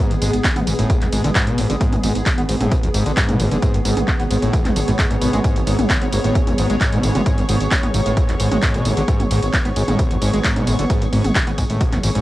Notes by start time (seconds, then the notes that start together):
Already playing: B3 G#4 D#5 B5
0.00 G#2
0.11 G#1 F#2, closed hi-hat, tambourine
0.22 G#1 G#2, open hi-hat, ride, tambourine
0.33 G#1, closed hi-hat, tambourine
0.44 kick, clap, closed hi-hat, ride, tambourine
0.55 G#1 B3 C#6, closed hi-hat, mid tom, tambourine
0.67 G#1 G#2, open hi-hat, ride, tambourine
0.79 G#1 A2, closed hi-hat, tambourine
0.90 G#1, kick, closed hi-hat, ride, tambourine
1.02 G#1 G#2, clap, closed hi-hat, tambourine
1.12 G#1 G#2, open hi-hat, ride, tambourine
1.24 G#1 D3, closed hi-hat, mid tom, tambourine
1.35 G#2, kick, clap, closed hi-hat, ride, tambourine
1.47 G#1 B2, closed hi-hat, tambourine
1.58 G#1 G#2, open hi-hat, ride, tambourine
1.70 G#1 D3, closed hi-hat, tambourine
1.81 G#2, kick, closed hi-hat, ride, tambourine
1.92 G#1 F#2, closed hi-hat, mid tom, tambourine
2.03 G#1 G#2, open hi-hat, ride, tambourine
2.15 G#1, closed hi-hat, tambourine
2.26 kick, clap, closed hi-hat, ride, tambourine
2.38 G#1 B3, closed hi-hat, tambourine
2.44 C#5
2.49 G#1 G#2, open hi-hat, ride, tambourine
2.61 G#1 A2, closed hi-hat, mid tom, tambourine
2.72 G#1, kick, closed hi-hat, ride, tambourine
2.83 G#1 G#2, closed hi-hat, tambourine
2.94 G#1 G#2, open hi-hat, ride, tambourine
3.06 G#1 D3, closed hi-hat, tambourine
3.17 G#2, kick, clap, closed hi-hat, ride, tambourine
3.29 G#2 B2, closed hi-hat, mid tom, tambourine
3.40 G#1 G#2, open hi-hat, ride, tambourine
3.52 F#1 D3, closed hi-hat, tambourine
3.62 G#2, kick, closed hi-hat, ride, tambourine
3.74 G#1 F#2, closed hi-hat, tambourine
3.85 G#1 G#2, open hi-hat, ride, tambourine
3.97 G#1, closed hi-hat, mid tom, tambourine
4.08 kick, clap, closed hi-hat, ride, tambourine
4.20 G#1 B3, closed hi-hat, tambourine
4.31 G#1 G#2, open hi-hat, ride, tambourine
4.42 G#1 A2, closed hi-hat, tambourine
4.53 G#1, kick, closed hi-hat, ride, tambourine
4.65 G#1 G#2, clap, closed hi-hat, mid tom, tambourine
4.76 G#1 D3, open hi-hat, ride, tambourine
4.88 G#1 G#2, closed hi-hat, tambourine
4.99 G#2, kick, clap, closed hi-hat, ride, tambourine
5.11 G#1 G#2, closed hi-hat, tambourine
5.22 G#1 B2, open hi-hat, ride, tambourine
5.33 G#1 G#3, closed hi-hat, mid tom, tambourine
5.44 G#2, kick, closed hi-hat, ride, tambourine
5.56 G#1 F#2, closed hi-hat, tambourine
5.67 G#1 G#2, open hi-hat, ride, tambourine
5.79 G#1, closed hi-hat, mid tom, tambourine
5.90 kick, clap, closed hi-hat, ride, tambourine
6.02 G#1 B3, closed hi-hat, tambourine
6.13 G#1 G#2, open hi-hat, ride, tambourine
6.24 G#1 A2, closed hi-hat, tambourine
6.35 G#1, kick, closed hi-hat, ride, tambourine
6.47 G#1 G#2, closed hi-hat, mid tom, tambourine
6.58 G#1 G#2, open hi-hat, ride, tambourine
6.70 G#1 G#3, closed hi-hat, tambourine
6.81 G#2, kick, clap, closed hi-hat, ride, tambourine
6.92 G#2 B2, closed hi-hat, tambourine
7.03 G#1 G#2, open hi-hat, ride, tambourine
7.15 F#1 D3, closed hi-hat, mid tom, tambourine
7.26 G#2, kick, closed hi-hat, ride, tambourine
7.38 G#1 F#2, closed hi-hat, tambourine
7.49 G#1 G#2, open hi-hat, ride, tambourine
7.61 G#1, closed hi-hat, tambourine
7.72 kick, clap, closed hi-hat, ride, tambourine
7.83 G#1 B3, closed hi-hat, mid tom, tambourine
7.94 G#1 G#2, open hi-hat, ride, tambourine
8.06 G#1 A2, closed hi-hat, tambourine
8.17 G#1, kick, closed hi-hat, ride, tambourine
8.29 G#1 G#2, clap, closed hi-hat, tambourine
8.40 G#1 G#2, open hi-hat, ride, tambourine
8.52 G#1 G#3, closed hi-hat, mid tom, tambourine
8.62 G#2, kick, clap, closed hi-hat, ride, tambourine
8.74 G#1 B2, closed hi-hat, tambourine
8.85 G#1 G#2, open hi-hat, ride, tambourine
8.97 G#1 D3, closed hi-hat, tambourine
9.08 G#2, kick, closed hi-hat, ride, tambourine
9.20 G#1 F#2, closed hi-hat, mid tom, tambourine
9.31 G#1 G#2, open hi-hat, ride, tambourine
9.42 G#1, closed hi-hat, tambourine
9.53 kick, clap, closed hi-hat, ride, tambourine
9.65 G#1 B3, closed hi-hat, tambourine
9.76 G#1 G#2, open hi-hat, ride, tambourine
9.88 G#1 A2, closed hi-hat, mid tom, tambourine
9.99 G#1, kick, closed hi-hat, ride, tambourine
10.11 G#1 G#2, closed hi-hat, tambourine
10.22 G#1 G#2, open hi-hat, ride, tambourine
10.33 G#1 G#3, closed hi-hat, tambourine
10.44 G#2, kick, clap, closed hi-hat, ride, tambourine
10.56 G#2 B2, closed hi-hat, mid tom, tambourine
10.67 G#1 G#2, open hi-hat, ride, tambourine
10.79 F#1 D3, closed hi-hat, tambourine
10.90 G#2, kick, closed hi-hat, ride, tambourine
11.02 G#1 F#2, closed hi-hat, tambourine
11.13 G#1 G#2, open hi-hat, ride, tambourine
11.24 G#1, closed hi-hat, mid tom, tambourine
11.35 kick, clap, closed hi-hat, ride, tambourine
11.47 G#1 B3, closed hi-hat, tambourine
11.58 G#1 G#2, kick, open hi-hat, ride, tambourine
11.70 G#1 A2, closed hi-hat, tambourine
11.81 G#1, kick, closed hi-hat, ride, tambourine
11.92 G#1 G#2, clap, closed hi-hat, mid tom, tambourine
12.03 G#1 G#2, open hi-hat, ride, tambourine
12.15 G#1 G#2, closed hi-hat, tambourine